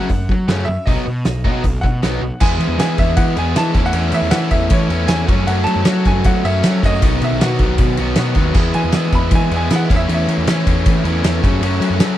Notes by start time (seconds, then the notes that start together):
Already playing: F#5
0.09 F#2, muted overdriven electric guitar stroke, kick, open hi-hat
0.29 F#3, muted overdriven electric guitar stroke, kick
0.48 F#2 C#3 F#3 A3 C#4, snare, open hi-hat
0.65 F#2 E5, muted overdriven electric guitar stroke
0.86 B1 B2 F#3 B3 D#4 D#5, kick, open hi-hat
1.06 B2, muted overdriven electric guitar stroke
1.25 B1, muted overdriven electric guitar stroke, snare, open hi-hat
1.45 B2 F#3 B3 D#4, kick
1.64 B1, muted overdriven electric guitar stroke, kick, open hi-hat
1.81 B2 F#5, muted overdriven electric guitar stroke, kick
2.02 B1 B2 F#3 B3 D#4, snare, open hi-hat
2.21 B1, muted overdriven electric guitar stroke
2.40 E2 E3 G#3 B3 E4 G#5, kick, crash
2.59 E3, ride
2.68 E2
2.78 E3 G#3 B3 E4 G#5, snare, ride
2.98 E2 E5, kick, ride
3.17 E3 F#5, kick, ride
3.35 E2 G#3 B3 E4 G#5, ride
3.55 E3 G#3 B3 E4 A5, snare, ride
3.73 E2 E3 A3 C#4 E4, kick, ride
3.86 F#5
3.93 E2 E3 A3 C#4 E4, ride
4.12 E3 E5, ride
4.22 E2
4.31 E3 A3 C#4 E4 F#5, snare, ride
4.51 E2 E5, kick, ride
4.70 E3 C#5, kick, ride
4.88 E2 A3 C#4 E4, ride
5.06 E2 E3 A3 C#4 E4 G#5, snare, ride
5.26 F#2 F#3 A3 C#4 F#4, kick, ride
5.47 F#2 F#3 A3 C#4 F#4 F#5, ride
5.64 F#3 A5, ride
5.76 F#2
5.85 F#3 A3 C#4 F#4, snare, ride
6.05 F#2 G#5, kick, ride
6.24 F#3 F#5, kick, ride
6.43 F#2 A3 C#4 F#4 E5, ride
6.63 F#3 A3 C#4 F#4, snare, ride
6.83 F#2 A3 C#4 F#4 D#5, kick, ride
7.01 B1 B2 D#3 F#3 B3 F#4, kick, ride
7.22 B2 E5, ride
7.31 B1
7.40 B2 D#3 F#3 B3 F#4 F#5, snare, ride
7.59 B1, kick, ride
7.78 B2, kick, ride
7.97 B1 B3 F#4, ride
8.01 F#3
8.15 B2 D#3 F#3 B3 F#4, snare, ride
8.35 D#2 B3 F#4, kick, ride
8.39 F#3
8.54 E2 E3 G#3 B3 E4, kick, crash
8.74 E3 G#5, ride
8.84 E2
8.92 E3 G#3 B3 E4, snare, ride
9.12 E2 B5, kick, ride
9.31 E3, kick, ride
9.35 G#5
9.51 E2 G#3 B3 E4, ride
9.57 G#5
9.70 E3 G#3 B3 E4, snare, ride
9.76 F#5
9.89 E2 E3 A3 C#4 E4, kick, ride
9.96 E5
10.08 E2 E3 A3 C#4 E4, ride
10.14 E5
10.28 E3, ride
10.38 E2
10.47 E3 A3 C#4 E4, snare, ride
10.67 E2, kick, ride
10.86 E3, kick, ride
11.04 E2 A3 C#4 E4, ride
11.24 E2 E3 A3 C#4 E4, snare, ride
11.43 F#2 C#3 F#3 A3 C#4 F#4, kick, ride
11.60 F#2 C#3 F#3 A3, ride
11.65 C#4 F#4
11.80 F#3, ride
11.90 F#2
11.99 F#2 C#3 F#3, snare, ride
12.04 A3 C#4 F#4